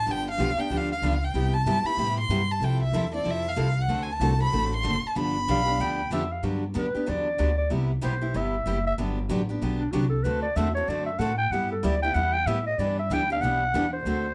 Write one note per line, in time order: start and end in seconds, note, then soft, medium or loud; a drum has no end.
0.00 0.13 A5 medium
0.06 0.38 G1 medium
0.06 0.26 D3 medium
0.06 0.27 F3 medium
0.06 0.27 B3 medium
0.06 0.27 D4 medium
0.06 0.27 G4 medium
0.11 0.28 G5 loud
0.31 0.61 F5 medium
0.38 0.56 B1 medium
0.38 0.49 D3 medium
0.38 0.49 F3 medium
0.38 0.50 B3 medium
0.38 0.50 D4 medium
0.38 0.50 G4 loud
0.57 0.70 B3 soft
0.57 0.70 D4 medium
0.57 0.70 G4 medium
0.57 0.78 G5 medium
0.57 muted upright bass stroke soft
0.70 1.01 D2 medium
0.70 0.90 D3 medium
0.70 0.91 F3 medium
0.70 0.91 B3 medium
0.70 0.91 D4 medium
0.70 0.91 G4 medium
0.77 0.91 F5 medium
0.92 1.26 F5 medium
1.02 1.33 C#2 medium
1.02 1.13 D3 medium
1.02 1.13 F3 medium
1.02 1.14 B3 medium
1.02 1.14 D4 medium
1.02 1.14 G4 medium
1.24 1.55 G5 medium
1.34 1.65 C2 medium
1.34 1.54 C3 medium
1.34 1.54 G3 medium
1.34 1.55 B3 medium
1.34 1.55 E4 medium
1.34 1.55 G4 medium
1.54 1.88 A5 medium
1.65 1.83 G2 medium
1.65 1.77 C3 medium
1.65 1.77 G3 medium
1.65 1.77 B3 medium
1.65 1.77 E4 medium
1.65 1.78 G4 medium
1.84 1.97 B3 soft
1.84 1.97 E4 medium
1.84 1.98 G4 medium
1.84 2.18 B5 medium
1.84 muted upright bass stroke soft
1.97 2.28 A2 medium
1.97 2.18 C3 medium
1.97 2.18 G3 medium
1.97 2.18 B3 medium
1.97 2.18 E4 medium
1.97 2.19 G4 medium
2.20 2.53 C6 medium
2.29 2.59 G2 medium
2.29 2.41 C3 medium
2.29 2.41 G3 medium
2.29 2.41 B3 medium
2.29 2.41 E4 medium
2.29 2.41 G4 loud
2.51 2.66 A5 medium
2.60 2.92 C2 medium
2.60 2.82 C3 medium
2.60 2.82 F3 medium
2.60 2.82 C4 medium
2.60 2.82 E4 medium
2.60 2.82 A4 medium
2.64 2.82 G5 medium
2.83 3.12 E5 medium
2.92 3.24 E2 medium
2.92 3.04 C3 medium
2.92 3.05 F3 medium
2.92 3.05 C4 medium
2.92 3.05 E4 medium
2.92 3.05 A4 medium
3.12 3.24 C4 medium
3.12 3.24 E4 medium
3.12 3.24 A4 medium
3.12 3.32 D5 medium
3.24 3.56 F2 medium
3.24 3.45 C3 medium
3.24 3.45 F3 medium
3.24 3.45 C4 medium
3.24 3.45 E4 medium
3.24 3.46 A4 medium
3.31 3.50 E5 medium
3.49 3.83 F5 medium
3.56 3.88 C2 medium
3.56 3.67 C3 medium
3.56 3.68 F3 medium
3.56 3.68 C4 medium
3.56 3.68 E4 medium
3.56 3.68 A4 medium
3.82 4.04 F#5 medium
3.88 4.19 D2 medium
3.88 4.09 D3 medium
3.88 4.09 A3 medium
3.88 4.09 C4 medium
3.88 4.09 F#4 medium
3.88 4.09 A4 medium
4.03 4.14 G#5 medium
4.12 4.42 A5 medium
4.20 4.51 C2 medium
4.20 4.32 D3 medium
4.20 4.32 A3 medium
4.20 4.32 C4 medium
4.20 4.32 F#4 medium
4.20 4.32 A4 medium
4.39 4.53 C4 medium
4.39 4.52 F#4 medium
4.39 4.52 A4 medium
4.43 4.71 B5 medium
4.52 4.83 A1 medium
4.52 4.73 D3 medium
4.52 4.73 A3 medium
4.52 4.73 C4 medium
4.52 4.73 F#4 medium
4.52 4.73 A4 medium
4.77 5.08 C6 medium
4.83 5.02 F#1 medium
4.83 4.95 D3 medium
4.83 4.95 A3 medium
4.83 4.95 C4 medium
4.83 4.95 F#4 medium
4.83 4.95 A4 medium
5.04 5.18 A5 medium
5.04 muted upright bass stroke soft
5.15 5.47 G1 medium
5.15 5.36 D3 medium
5.15 5.36 F3 medium
5.15 5.36 B3 medium
5.15 5.37 D4 medium
5.15 5.36 G4 medium
5.15 6.09 B5 loud
5.48 5.78 B1 medium
5.48 5.59 D3 medium
5.48 5.59 F3 medium
5.48 5.59 B3 medium
5.48 5.59 D4 loud
5.48 5.59 G4 loud
5.48 5.82 F5 medium
5.66 5.79 B3 soft
5.66 5.79 D4 medium
5.66 5.79 G4 medium
5.79 6.10 D2 medium
5.79 6.00 D3 medium
5.79 6.00 F3 medium
5.79 6.00 B3 medium
5.79 6.00 D4 medium
5.79 6.00 G4 medium
5.79 6.12 G5 loud
6.10 6.42 F2 medium
6.10 6.22 D3 medium
6.10 6.23 F3 medium
6.10 6.22 B3 medium
6.10 6.23 D4 medium
6.10 6.23 G4 loud
6.10 6.34 E5 medium
6.32 6.44 F5 medium
6.43 6.74 G2 medium
6.43 6.63 D3 medium
6.43 6.63 F#3 medium
6.43 6.63 B3 medium
6.43 6.64 D4 medium
6.43 6.64 G4 medium
6.74 6.93 F#2 medium
6.74 6.85 D3 medium
6.74 6.86 F#3 medium
6.74 6.86 B3 medium
6.74 6.86 D4 medium
6.74 6.86 G4 medium
6.74 7.11 B4 medium
6.95 7.06 B3 medium
6.95 7.06 D4 medium
6.95 7.07 G4 medium
6.95 muted upright bass stroke soft
7.06 7.38 E2 medium
7.06 7.27 D3 medium
7.06 7.27 F#3 medium
7.06 7.27 B3 medium
7.06 7.27 D4 medium
7.06 7.27 G4 medium
7.06 7.57 D5 medium
7.38 7.70 D2 medium
7.38 7.49 D3 medium
7.38 7.50 F#3 medium
7.38 7.50 B3 medium
7.38 7.50 D4 medium
7.38 7.50 G4 medium
7.58 7.70 D5 medium
7.70 8.02 C2 medium
7.70 7.90 C3 medium
7.70 7.91 G3 medium
7.70 7.90 B3 medium
7.70 7.91 E4 medium
7.70 7.91 G4 medium
8.01 8.34 B1 medium
8.01 8.13 C3 medium
8.01 8.13 G3 medium
8.01 8.13 B3 medium
8.01 8.13 E4 medium
8.01 8.13 G4 medium
8.01 8.38 C5 medium
8.21 8.33 B3 soft
8.21 8.34 E4 medium
8.21 8.34 G4 medium
8.34 8.65 G1 medium
8.34 8.54 C3 medium
8.34 8.54 G3 medium
8.34 8.54 B3 medium
8.34 8.55 E4 medium
8.34 8.55 G4 medium
8.34 8.86 E5 medium
8.66 8.97 F#1 medium
8.66 8.77 C3 medium
8.66 8.77 G3 medium
8.66 8.77 B3 medium
8.66 8.78 E4 medium
8.66 8.78 G4 medium
8.87 8.94 E5 medium
8.98 9.28 G1 medium
8.98 9.18 D3 medium
8.98 9.18 F#3 medium
8.98 9.18 B3 medium
8.98 9.18 D4 medium
8.98 9.18 G4 medium
9.29 9.60 A1 medium
9.29 9.40 D3 medium
9.29 9.40 F#3 medium
9.29 9.40 B3 medium
9.29 9.41 D4 loud
9.29 9.41 G4 medium
9.49 9.61 B3 medium
9.49 9.62 D4 medium
9.49 9.61 G4 medium
9.61 9.92 B1 medium
9.61 9.82 D3 medium
9.61 9.82 F#3 medium
9.61 9.82 B3 medium
9.61 9.82 D4 medium
9.61 9.82 G4 medium
9.78 9.93 D4 medium
9.92 10.24 C2 medium
9.92 10.04 D3 medium
9.92 10.04 F#3 medium
9.92 10.04 B3 medium
9.92 10.04 D4 medium
9.92 10.09 F#4 medium
9.92 10.04 G4 loud
10.10 10.25 A4 medium
10.23 10.55 D2 medium
10.23 10.45 D3 medium
10.23 10.45 A3 medium
10.23 10.45 C4 medium
10.23 10.45 F#4 medium
10.23 10.45 A4 medium
10.23 10.42 B4 medium
10.42 10.58 D5 medium
10.56 10.87 E2 medium
10.56 10.67 D3 medium
10.56 10.68 A3 medium
10.56 10.68 C4 medium
10.56 10.68 F#4 loud
10.56 10.68 A4 loud
10.56 10.74 E5 loud
10.74 10.89 C4 medium
10.74 10.89 F#4 medium
10.74 10.89 A4 medium
10.74 10.90 C#5 medium
10.88 11.18 F#2 medium
10.88 11.09 D3 medium
10.88 11.09 A3 medium
10.88 11.09 C4 medium
10.88 11.09 F#4 medium
10.88 11.09 A4 medium
10.88 11.05 D5 medium
11.06 11.21 E5 medium
11.19 11.49 A2 medium
11.19 11.31 D3 medium
11.19 11.31 A3 medium
11.19 11.32 C4 medium
11.19 11.32 F#4 medium
11.19 11.32 A4 medium
11.19 11.37 F#5 medium
11.37 11.53 G5 loud
11.50 11.82 G2 medium
11.50 11.72 G3 medium
11.50 11.72 B3 medium
11.50 11.72 E4 medium
11.50 11.73 G4 medium
11.50 11.70 F#5 medium
11.71 11.86 A4 medium
11.83 12.14 D2 medium
11.83 11.94 G3 medium
11.83 11.95 B3 medium
11.83 11.95 E4 medium
11.83 11.95 G4 medium
11.83 12.02 D5 medium
12.02 12.14 B3 soft
12.02 12.14 E4 medium
12.02 12.15 G4 medium
12.02 12.15 G5 loud
12.14 12.45 E2 medium
12.14 12.35 G3 medium
12.14 12.35 B3 medium
12.14 12.35 E4 medium
12.14 12.35 G4 medium
12.14 12.34 F#5 medium
12.33 12.48 G5 loud
12.46 12.77 A2 medium
12.46 12.58 G3 medium
12.46 12.58 B3 medium
12.46 12.58 E4 medium
12.46 12.58 G4 medium
12.46 12.66 E5 medium
12.67 12.80 D#5 medium
12.78 13.09 G2 medium
12.78 12.99 E3 medium
12.78 12.99 G3 medium
12.78 12.99 B3 medium
12.78 12.99 D4 medium
12.78 12.99 E4 medium
12.78 12.99 G4 medium
12.78 12.99 B4 medium
12.78 12.98 D5 medium
12.99 13.15 E5 medium
13.10 13.40 D2 medium
13.10 13.21 E3 medium
13.10 13.21 G3 medium
13.10 13.21 B3 medium
13.10 13.21 D4 medium
13.10 13.21 E4 loud
13.10 13.22 G4 loud
13.10 13.22 B4 loud
13.10 13.31 G5 loud
13.30 13.43 B3 soft
13.30 13.43 D4 medium
13.30 13.42 G4 medium
13.30 13.43 F5 medium
13.41 13.72 B1 medium
13.41 13.62 E3 medium
13.41 13.62 G3 medium
13.41 13.63 B3 medium
13.41 13.63 D4 medium
13.41 13.62 E4 medium
13.41 13.63 G4 medium
13.41 13.62 B4 medium
13.41 13.92 F#5 loud
13.74 14.04 E2 medium
13.74 13.85 E3 medium
13.74 13.85 G3 medium
13.74 13.85 B3 medium
13.74 13.85 D4 medium
13.74 13.85 E4 loud
13.74 13.85 G4 medium
13.74 13.85 B4 loud
13.93 14.34 C5 medium
14.05 14.34 D2 medium
14.05 14.25 D3 medium
14.05 14.25 A3 medium
14.05 14.26 C4 medium
14.05 14.26 F#4 medium
14.05 14.26 A4 medium